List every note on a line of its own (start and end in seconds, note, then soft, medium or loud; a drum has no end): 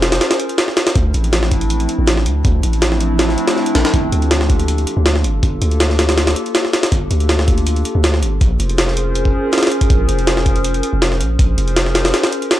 0.00 0.20 F1 medium
0.00 0.20 C#4 medium
0.00 0.20 F4 medium
0.00 0.20 G#4 medium
0.00 0.20 A#4 medium
0.00 0.20 C5 medium
0.00 snare loud
0.00 closed hi-hat medium
0.12 snare loud
0.12 closed hi-hat medium
0.21 snare loud
0.21 closed hi-hat medium
0.31 snare loud
0.31 closed hi-hat medium
0.40 closed hi-hat medium
0.49 closed hi-hat soft
0.58 snare loud
0.58 closed hi-hat medium
0.68 snare soft
0.77 snare loud
0.77 closed hi-hat medium
0.87 snare loud
0.87 closed hi-hat medium
0.95 1.12 D2 loud
0.95 1.87 F3 medium
0.95 1.86 A3 medium
0.95 1.87 C4 medium
0.95 1.86 D4 medium
0.95 1.86 E4 medium
0.95 kick loud
0.95 closed hi-hat medium
1.14 1.87 A1 medium
1.14 closed hi-hat medium
1.24 closed hi-hat soft
1.33 snare loud
1.33 closed hi-hat medium
1.43 snare medium
1.51 kick loud
1.51 closed hi-hat medium
1.61 closed hi-hat soft
1.70 closed hi-hat medium
1.80 closed hi-hat soft
1.89 closed hi-hat medium
1.99 2.28 A1 medium
2.07 snare loud
2.07 closed hi-hat loud
2.17 snare soft
2.26 2.43 D2 medium
2.26 closed hi-hat medium
2.45 2.62 D2 loud
2.45 3.36 F3 medium
2.45 3.36 A3 medium
2.45 3.36 C4 medium
2.45 3.36 D4 medium
2.45 3.36 E4 medium
2.45 kick loud
2.45 closed hi-hat medium
2.63 3.36 A1 medium
2.63 closed hi-hat medium
2.73 closed hi-hat soft
2.82 snare loud
2.82 closed hi-hat medium
2.92 snare soft
3.00 closed hi-hat medium
3.19 snare loud
3.19 closed hi-hat medium
3.29 snare soft
3.38 closed hi-hat medium
3.48 snare loud
3.48 closed hi-hat medium
3.56 snare soft
3.66 closed hi-hat medium
3.75 3.84 A1 loud
3.75 snare loud
3.75 closed hi-hat medium
3.85 snare loud
3.85 closed hi-hat medium
3.94 4.11 G1 loud
3.94 4.85 A#3 medium
3.94 4.85 D4 medium
3.94 4.85 F4 medium
3.94 4.85 G4 medium
3.94 4.85 A4 medium
3.94 kick loud
3.94 closed hi-hat medium
4.12 4.86 D2 medium
4.12 closed hi-hat medium
4.22 closed hi-hat soft
4.31 snare loud
4.31 closed hi-hat medium
4.41 snare medium
4.50 kick medium
4.50 closed hi-hat medium
4.60 closed hi-hat soft
4.68 closed hi-hat medium
4.78 closed hi-hat soft
4.87 closed hi-hat medium
4.97 5.26 D2 medium
5.06 snare loud
5.06 closed hi-hat medium
5.15 snare soft
5.24 5.41 G1 medium
5.24 closed hi-hat medium
5.43 5.60 G1 loud
5.43 6.34 A#3 medium
5.43 6.34 D4 medium
5.43 6.34 F4 medium
5.43 6.34 G4 medium
5.43 6.34 A4 loud
5.43 kick loud
5.43 closed hi-hat medium
5.62 6.35 D2 medium
5.62 closed hi-hat medium
5.71 closed hi-hat soft
5.80 snare loud
5.80 closed hi-hat medium
5.90 snare soft
5.99 snare loud
5.99 closed hi-hat medium
6.09 snare loud
6.09 closed hi-hat medium
6.18 snare loud
6.18 closed hi-hat medium
6.27 snare loud
6.27 closed hi-hat medium
6.36 closed hi-hat medium
6.46 closed hi-hat soft
6.55 snare loud
6.55 closed hi-hat loud
6.65 snare soft
6.73 snare loud
6.73 closed hi-hat medium
6.83 snare loud
6.83 closed hi-hat medium
6.92 7.09 G1 loud
6.92 7.83 A#3 medium
6.92 7.83 D4 medium
6.92 7.83 F4 medium
6.92 7.83 G4 medium
6.92 7.83 A4 medium
6.92 kick loud
6.92 closed hi-hat medium
7.11 7.84 D2 medium
7.11 closed hi-hat medium
7.20 closed hi-hat soft
7.29 snare loud
7.29 closed hi-hat medium
7.39 snare medium
7.48 kick loud
7.48 closed hi-hat medium
7.58 closed hi-hat soft
7.67 closed hi-hat medium
7.76 closed hi-hat soft
7.85 closed hi-hat medium
7.95 8.24 D2 loud
8.04 snare loud
8.04 closed hi-hat medium
8.14 snare soft
8.22 8.39 G1 medium
8.22 closed hi-hat medium
8.41 8.58 A#1 loud
8.41 9.32 C#4 medium
8.41 9.32 F4 medium
8.41 9.32 G#4 medium
8.41 9.32 A#4 medium
8.41 9.32 C5 medium
8.41 kick loud
8.41 closed hi-hat medium
8.60 9.33 F1 medium
8.60 closed hi-hat medium
8.70 closed hi-hat soft
8.78 snare loud
8.78 closed hi-hat medium
8.88 snare soft
8.97 closed hi-hat medium
9.15 closed hi-hat medium
9.25 kick medium
9.53 snare medium
9.53 closed hi-hat medium
9.58 snare medium
9.58 closed hi-hat medium
9.63 snare medium
9.63 closed hi-hat medium
9.67 snare medium
9.67 closed hi-hat medium
9.72 closed hi-hat medium
9.81 kick loud
9.81 closed hi-hat medium
9.90 10.07 A#1 loud
9.90 10.81 C#4 medium
9.90 10.81 F4 medium
9.90 10.81 G#4 medium
9.90 10.81 A#4 medium
9.90 10.81 C5 loud
9.90 kick loud
9.90 closed hi-hat medium
10.09 10.82 F1 medium
10.09 closed hi-hat medium
10.19 closed hi-hat soft
10.27 snare loud
10.27 closed hi-hat medium
10.37 snare medium
10.46 kick loud
10.46 closed hi-hat medium
10.56 closed hi-hat soft
10.64 closed hi-hat medium
10.74 closed hi-hat soft
10.83 closed hi-hat medium
10.93 11.22 F1 medium
11.02 snare loud
11.02 closed hi-hat medium
11.12 snare soft
11.20 11.37 A#1 medium
11.20 closed hi-hat medium
11.39 11.56 A#1 loud
11.39 12.13 C#4 medium
11.39 12.13 F4 medium
11.39 12.13 G#4 medium
11.39 12.13 A#4 medium
11.39 12.13 C5 medium
11.39 kick loud
11.39 closed hi-hat loud
11.58 12.12 F1 medium
11.58 closed hi-hat medium
11.68 closed hi-hat soft
11.76 snare loud
11.76 closed hi-hat medium
11.86 snare soft
11.95 snare loud
11.95 closed hi-hat medium
12.05 snare loud
12.05 closed hi-hat medium
12.14 snare loud
12.14 closed hi-hat medium
12.23 snare loud
12.23 closed hi-hat medium
12.32 closed hi-hat medium
12.42 closed hi-hat soft
12.51 snare loud
12.51 closed hi-hat medium